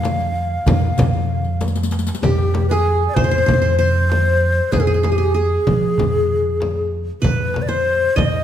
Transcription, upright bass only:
0, 0, Header, 1, 2, 480
1, 0, Start_track
1, 0, Key_signature, -4, "minor"
1, 0, Tempo, 625652
1, 1711, Time_signature, 4, 2, 24, 8
1, 6474, End_track
2, 0, Start_track
2, 0, Title_t, "Upright bass"
2, 0, Program_c, 0, 32
2, 0, Note_on_c, 0, 41, 76
2, 425, Note_off_c, 0, 41, 0
2, 507, Note_on_c, 0, 41, 76
2, 720, Note_off_c, 0, 41, 0
2, 753, Note_on_c, 0, 41, 84
2, 1600, Note_off_c, 0, 41, 0
2, 1706, Note_on_c, 0, 41, 78
2, 2344, Note_off_c, 0, 41, 0
2, 2426, Note_on_c, 0, 41, 76
2, 2640, Note_off_c, 0, 41, 0
2, 2673, Note_on_c, 0, 41, 89
2, 3520, Note_off_c, 0, 41, 0
2, 3629, Note_on_c, 0, 41, 74
2, 4266, Note_off_c, 0, 41, 0
2, 4357, Note_on_c, 0, 53, 79
2, 4566, Note_off_c, 0, 53, 0
2, 4595, Note_on_c, 0, 41, 84
2, 5440, Note_off_c, 0, 41, 0
2, 5546, Note_on_c, 0, 41, 75
2, 6183, Note_off_c, 0, 41, 0
2, 6266, Note_on_c, 0, 41, 78
2, 6474, Note_off_c, 0, 41, 0
2, 6474, End_track
0, 0, End_of_file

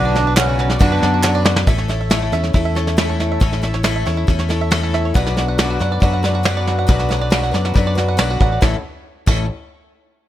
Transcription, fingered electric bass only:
0, 0, Header, 1, 2, 480
1, 0, Start_track
1, 0, Key_signature, 3, "major"
1, 0, Tempo, 434153
1, 1849, Time_signature, 4, 2, 24, 8
1, 11370, End_track
2, 0, Start_track
2, 0, Title_t, "Fingered electric bass"
2, 0, Program_c, 0, 33
2, 0, Note_on_c, 0, 35, 114
2, 846, Note_off_c, 0, 35, 0
2, 892, Note_on_c, 0, 42, 89
2, 1118, Note_off_c, 0, 42, 0
2, 1140, Note_on_c, 0, 42, 96
2, 1816, Note_off_c, 0, 42, 0
2, 1851, Note_on_c, 0, 33, 81
2, 2532, Note_off_c, 0, 33, 0
2, 2570, Note_on_c, 0, 40, 79
2, 2797, Note_off_c, 0, 40, 0
2, 2811, Note_on_c, 0, 40, 79
2, 3727, Note_off_c, 0, 40, 0
2, 3774, Note_on_c, 0, 33, 91
2, 4455, Note_off_c, 0, 33, 0
2, 4495, Note_on_c, 0, 40, 79
2, 4721, Note_off_c, 0, 40, 0
2, 4737, Note_on_c, 0, 40, 89
2, 5651, Note_off_c, 0, 40, 0
2, 5699, Note_on_c, 0, 35, 89
2, 6378, Note_off_c, 0, 35, 0
2, 6418, Note_on_c, 0, 42, 89
2, 6643, Note_off_c, 0, 42, 0
2, 6656, Note_on_c, 0, 42, 94
2, 7571, Note_off_c, 0, 42, 0
2, 7619, Note_on_c, 0, 35, 88
2, 8298, Note_off_c, 0, 35, 0
2, 8332, Note_on_c, 0, 42, 89
2, 8560, Note_off_c, 0, 42, 0
2, 8573, Note_on_c, 0, 42, 90
2, 9028, Note_off_c, 0, 42, 0
2, 9052, Note_on_c, 0, 35, 88
2, 9269, Note_off_c, 0, 35, 0
2, 9297, Note_on_c, 0, 33, 84
2, 9511, Note_off_c, 0, 33, 0
2, 9534, Note_on_c, 0, 33, 90
2, 9668, Note_off_c, 0, 33, 0
2, 10256, Note_on_c, 0, 33, 102
2, 10478, Note_off_c, 0, 33, 0
2, 11370, End_track
0, 0, End_of_file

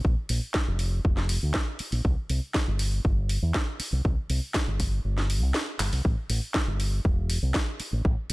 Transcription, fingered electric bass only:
0, 0, Header, 1, 3, 480
1, 0, Start_track
1, 0, Tempo, 500000
1, 45, Time_signature, 4, 2, 24, 8
1, 7996, End_track
2, 0, Start_track
2, 0, Title_t, "Fingered electric bass"
2, 0, Program_c, 0, 33
2, 48, Note_on_c, 0, 34, 92
2, 137, Note_off_c, 0, 34, 0
2, 285, Note_on_c, 0, 34, 88
2, 375, Note_off_c, 0, 34, 0
2, 652, Note_on_c, 0, 29, 88
2, 955, Note_off_c, 0, 29, 0
2, 1008, Note_on_c, 0, 29, 86
2, 1316, Note_off_c, 0, 29, 0
2, 1371, Note_on_c, 0, 38, 89
2, 1454, Note_off_c, 0, 38, 0
2, 1847, Note_on_c, 0, 34, 92
2, 1932, Note_off_c, 0, 34, 0
2, 1969, Note_on_c, 0, 36, 93
2, 2057, Note_off_c, 0, 36, 0
2, 2205, Note_on_c, 0, 36, 87
2, 2295, Note_off_c, 0, 36, 0
2, 2571, Note_on_c, 0, 31, 90
2, 2875, Note_off_c, 0, 31, 0
2, 2928, Note_on_c, 0, 31, 85
2, 3236, Note_off_c, 0, 31, 0
2, 3288, Note_on_c, 0, 40, 95
2, 3372, Note_off_c, 0, 40, 0
2, 3768, Note_on_c, 0, 36, 89
2, 3852, Note_off_c, 0, 36, 0
2, 3889, Note_on_c, 0, 36, 96
2, 3977, Note_off_c, 0, 36, 0
2, 4125, Note_on_c, 0, 36, 91
2, 4215, Note_off_c, 0, 36, 0
2, 4487, Note_on_c, 0, 31, 93
2, 4793, Note_off_c, 0, 31, 0
2, 4845, Note_on_c, 0, 31, 85
2, 5209, Note_off_c, 0, 31, 0
2, 5209, Note_on_c, 0, 36, 93
2, 5293, Note_off_c, 0, 36, 0
2, 5566, Note_on_c, 0, 31, 94
2, 5656, Note_off_c, 0, 31, 0
2, 5689, Note_on_c, 0, 36, 86
2, 5773, Note_off_c, 0, 36, 0
2, 5808, Note_on_c, 0, 33, 93
2, 5897, Note_off_c, 0, 33, 0
2, 6044, Note_on_c, 0, 33, 90
2, 6135, Note_off_c, 0, 33, 0
2, 6410, Note_on_c, 0, 31, 90
2, 6714, Note_off_c, 0, 31, 0
2, 6768, Note_on_c, 0, 28, 86
2, 7076, Note_off_c, 0, 28, 0
2, 7128, Note_on_c, 0, 36, 90
2, 7213, Note_off_c, 0, 36, 0
2, 7610, Note_on_c, 0, 33, 85
2, 7693, Note_off_c, 0, 33, 0
2, 7728, Note_on_c, 0, 33, 93
2, 7817, Note_off_c, 0, 33, 0
2, 7966, Note_on_c, 0, 33, 90
2, 7996, Note_off_c, 0, 33, 0
2, 7996, End_track
3, 0, Start_track
3, 0, Title_t, "Muted fingered electric bass strokes"
3, 1727, Note_on_c, 9, 29, 39
3, 1823, Note_off_c, 9, 29, 0
3, 3643, Note_on_c, 9, 29, 41
3, 3739, Note_off_c, 9, 29, 0
3, 7486, Note_on_c, 9, 29, 39
3, 7582, Note_off_c, 9, 29, 0
3, 7996, End_track
0, 0, End_of_file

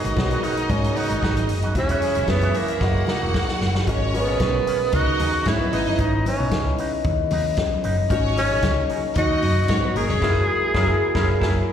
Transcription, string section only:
0, 0, Header, 1, 2, 480
1, 0, Start_track
1, 0, Tempo, 529101
1, 1590, Time_signature, 4, 2, 24, 8
1, 10638, End_track
2, 0, Start_track
2, 0, Title_t, "String section"
2, 0, Program_c, 0, 48
2, 0, Note_on_c, 0, 63, 82
2, 0, Note_on_c, 0, 75, 87
2, 1553, Note_off_c, 0, 63, 0
2, 1555, Note_off_c, 0, 75, 0
2, 1591, Note_on_c, 0, 76, 81
2, 1593, Note_on_c, 0, 64, 74
2, 2532, Note_off_c, 0, 76, 0
2, 2533, Note_off_c, 0, 64, 0
2, 2555, Note_on_c, 0, 78, 92
2, 2557, Note_on_c, 0, 66, 82
2, 3494, Note_off_c, 0, 78, 0
2, 3496, Note_off_c, 0, 66, 0
2, 3509, Note_on_c, 0, 61, 98
2, 3509, Note_on_c, 0, 73, 116
2, 4194, Note_off_c, 0, 61, 0
2, 4194, Note_off_c, 0, 73, 0
2, 4469, Note_on_c, 0, 75, 112
2, 4470, Note_on_c, 0, 63, 106
2, 4922, Note_off_c, 0, 63, 0
2, 4922, Note_off_c, 0, 75, 0
2, 4947, Note_on_c, 0, 73, 90
2, 4950, Note_on_c, 0, 61, 80
2, 5051, Note_off_c, 0, 73, 0
2, 5053, Note_off_c, 0, 61, 0
2, 5075, Note_on_c, 0, 59, 81
2, 5078, Note_on_c, 0, 71, 90
2, 5167, Note_off_c, 0, 59, 0
2, 5169, Note_off_c, 0, 71, 0
2, 5189, Note_on_c, 0, 63, 95
2, 5189, Note_on_c, 0, 75, 106
2, 5292, Note_off_c, 0, 63, 0
2, 5292, Note_off_c, 0, 75, 0
2, 5317, Note_on_c, 0, 75, 85
2, 5318, Note_on_c, 0, 63, 73
2, 5408, Note_off_c, 0, 75, 0
2, 5409, Note_off_c, 0, 63, 0
2, 7356, Note_on_c, 0, 73, 116
2, 7358, Note_on_c, 0, 61, 112
2, 8037, Note_off_c, 0, 73, 0
2, 8038, Note_off_c, 0, 61, 0
2, 8310, Note_on_c, 0, 63, 106
2, 8312, Note_on_c, 0, 75, 127
2, 8761, Note_off_c, 0, 63, 0
2, 8762, Note_off_c, 0, 75, 0
2, 8784, Note_on_c, 0, 73, 99
2, 8785, Note_on_c, 0, 61, 89
2, 8888, Note_off_c, 0, 61, 0
2, 8888, Note_off_c, 0, 73, 0
2, 8909, Note_on_c, 0, 59, 77
2, 8912, Note_on_c, 0, 71, 91
2, 9003, Note_off_c, 0, 59, 0
2, 9004, Note_off_c, 0, 71, 0
2, 9027, Note_on_c, 0, 58, 96
2, 9028, Note_on_c, 0, 70, 100
2, 9130, Note_off_c, 0, 58, 0
2, 9130, Note_off_c, 0, 70, 0
2, 9148, Note_on_c, 0, 73, 92
2, 9149, Note_on_c, 0, 61, 78
2, 9242, Note_off_c, 0, 61, 0
2, 9242, Note_off_c, 0, 73, 0
2, 10638, End_track
0, 0, End_of_file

